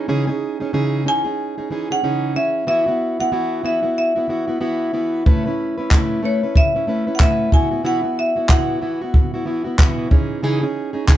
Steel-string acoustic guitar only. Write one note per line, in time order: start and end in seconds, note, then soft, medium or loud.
0.08 0.28 C#3 medium
0.08 0.28 E3 medium
0.08 0.28 C#4 medium
0.08 0.28 D#4 medium
0.08 0.26 G#4 loud
0.27 0.61 C#4 soft
0.27 0.60 D#4 medium
0.27 0.59 G#4 medium
0.60 0.73 C#4 soft
0.60 0.73 D#4 soft
0.60 0.73 G#4 medium
0.73 1.06 C#3 medium
0.73 1.04 E3 medium
0.73 1.05 C#4 medium
0.73 1.05 D#4 medium
0.73 1.06 G#4 medium
1.05 1.25 E3 medium
1.05 1.25 C#4 medium
1.05 1.25 D#4 medium
1.05 1.23 G#4 medium
1.24 1.58 C#4 soft
1.24 1.57 D#4 soft
1.24 1.57 G#4 medium
1.58 1.70 C#4 soft
1.58 1.70 D#4 soft
1.58 1.71 G#4 soft
1.71 1.90 E3 medium
1.71 1.90 C#4 medium
1.71 1.90 D#4 medium
1.71 1.89 G#4 medium
1.91 2.03 C#4 soft
1.91 2.03 D#4 soft
1.91 2.03 G#4 soft
2.03 2.35 C#3 medium
2.03 2.34 E3 medium
2.03 2.35 C#4 medium
2.03 2.36 D#4 medium
2.03 2.36 G#4 medium
2.35 2.66 E3 medium
2.35 2.67 C#4 medium
2.35 2.67 G#4 medium
2.67 2.87 E3 medium
2.67 2.87 B3 medium
2.67 2.87 E4 medium
2.67 2.85 F#4 medium
2.86 3.20 B3 soft
2.86 3.20 E4 soft
2.86 3.19 F#4 medium
3.20 3.31 B3 soft
3.20 3.32 E4 soft
3.20 3.32 F#4 soft
3.32 3.62 E3 medium
3.32 3.63 B3 medium
3.32 3.63 E4 medium
3.32 3.63 F#4 medium
3.63 3.83 E3 medium
3.63 3.83 B3 medium
3.63 3.82 E4 medium
3.63 3.81 F#4 medium
3.83 4.16 B3 soft
3.83 4.15 E4 soft
3.83 4.14 F#4 soft
4.15 4.28 B3 soft
4.15 4.29 E4 soft
4.15 4.29 F#4 soft
4.28 4.48 E3 medium
4.28 4.49 B3 medium
4.28 4.47 E4 medium
4.28 4.46 F#4 medium
4.48 4.60 B3 soft
4.48 4.60 E4 soft
4.48 4.60 F#4 medium
4.60 4.92 E3 medium
4.60 4.92 B3 medium
4.60 4.93 E4 medium
4.60 4.93 F#4 medium
4.93 5.26 E3 medium
4.93 5.26 B3 medium
4.93 5.25 E4 medium
4.93 5.27 F#4 medium
5.26 5.46 A3 medium
5.26 5.45 C#4 medium
5.26 5.46 E4 medium
5.26 5.44 B4 medium
5.46 5.79 C#4 soft
5.46 5.78 E4 medium
5.46 5.76 B4 medium
5.78 5.90 C#4 soft
5.78 5.91 E4 soft
5.78 5.91 B4 soft
5.91 6.21 A3 medium
5.91 6.22 C#4 medium
5.91 6.23 E4 medium
5.91 6.23 B4 medium
6.23 6.42 A3 medium
6.23 6.43 C#4 medium
6.23 6.43 E4 medium
6.23 6.42 B4 medium
6.43 6.75 C#4 soft
6.43 6.75 E4 soft
6.43 6.74 B4 soft
6.75 6.87 C#4 soft
6.75 6.87 E4 soft
6.75 6.88 B4 soft
6.87 7.07 A3 medium
6.87 7.07 C#4 medium
6.87 7.07 E4 medium
6.87 7.06 B4 medium
7.07 7.19 C#4 soft
7.07 7.20 E4 soft
7.07 7.20 B4 soft
7.20 7.52 A3 medium
7.20 7.53 C#4 medium
7.20 7.52 E4 medium
7.20 7.53 B4 medium
7.52 7.72 E3 medium
7.52 7.72 B3 medium
7.52 7.71 E4 medium
7.52 7.70 F#4 medium
7.71 7.83 B3 soft
7.71 7.84 E4 soft
7.71 7.84 F#4 medium
7.83 8.04 B2 medium
7.83 8.04 E3 medium
7.83 8.04 B3 medium
7.83 8.02 E4 medium
7.83 8.01 F#4 medium
8.04 8.36 B3 soft
8.04 8.35 E4 soft
8.36 8.49 B3 soft
8.36 8.50 E4 soft
8.36 8.49 F#4 soft
8.50 8.82 B2 medium
8.50 8.80 E3 medium
8.50 8.81 B3 medium
8.50 8.81 E4 medium
8.50 8.82 F#4 medium
8.81 9.01 E3 medium
8.81 9.02 B3 medium
8.81 9.02 E4 medium
8.81 9.00 F#4 medium
9.01 9.34 B3 soft
9.01 9.34 E4 soft
9.01 9.33 F#4 medium
9.34 9.45 B3 soft
9.34 9.46 E4 soft
9.34 9.47 F#4 medium
9.45 9.65 E3 medium
9.45 9.65 B3 medium
9.45 9.64 E4 medium
9.45 9.63 F#4 medium
9.64 9.78 B3 medium
9.64 9.79 E4 medium
9.64 9.78 F#4 medium
9.79 10.11 B2 medium
9.79 10.09 E3 medium
9.79 10.11 B3 medium
9.79 10.11 E4 medium
9.79 10.11 F#4 medium
10.10 10.42 E3 medium
10.10 10.42 C#4 medium
10.10 10.43 D#4 medium
10.10 10.43 G#4 medium
10.43 10.63 C#3 medium
10.43 10.63 E3 medium
10.43 10.62 C#4 medium
10.43 10.62 D#4 medium
10.43 10.60 G#4 loud
10.61 10.94 C#4 soft
10.61 10.93 D#4 medium
10.61 10.92 G#4 medium
10.93 11.06 C#4 soft
10.93 11.07 D#4 medium
10.93 11.07 G#4 soft
11.07 11.17 C#3 medium
11.07 11.17 E3 medium
11.07 11.17 C#4 medium
11.07 11.17 D#4 medium
11.07 11.17 G#4 medium